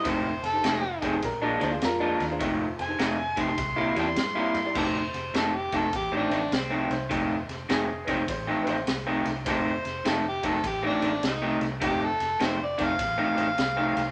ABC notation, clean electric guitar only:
X:1
M:4/4
L:1/16
Q:"Swing" 1/4=102
K:Fmix
V:1 name="Clean electric guitar" clef=bass
[F,,E,A,C] z3 [F,,E,A,C] z [F,,E,A,C] z2 [B,,F,_A,D] [B,,F,A,D] z2 [B,,F,A,D] z2 | [F,,E,A,C] z3 [F,,E,A,C] z [F,,E,A,C] z2 [C,G,B,=E] [C,G,B,E] z2 [C,G,B,E] z2 | [F,,E,A,C] z3 [F,,E,A,C] z [F,,E,A,C] z2 [F,,E,A,C] [F,,E,A,C] z2 [F,,E,A,C] z2 | [F,,E,A,C] z3 [F,,E,A,C] z [F,,E,A,C] z2 [F,,E,A,C] [F,,E,A,C] z2 [F,,E,A,C] z2 |
[F,,E,A,C] z3 [F,,E,A,C] z [F,,E,A,C] z2 [F,,E,A,C] [F,,E,A,C] z2 [F,,E,A,C] z2 | [F,,E,A,C] z3 [F,,E,A,C] z [F,,E,A,C] z2 [F,,E,A,C] [F,,E,A,C] z2 [F,,E,A,C] z2 |]